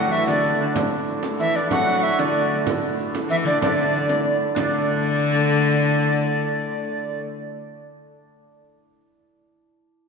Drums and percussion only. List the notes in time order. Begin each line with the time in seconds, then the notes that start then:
0.12 frame drum
0.28 riq, frame drum
0.44 riq
0.76 riq, frame drum
0.92 riq
1.08 riq
1.23 riq, frame drum
1.71 riq, frame drum
1.88 riq
2.04 riq
2.19 riq, frame drum
2.67 riq, frame drum
2.83 riq
2.99 riq
3.15 riq, frame drum
3.62 riq, frame drum
3.78 riq, frame drum
3.94 riq, frame drum
4.09 riq, frame drum
4.25 riq, frame drum
4.41 frame drum
4.56 riq, frame drum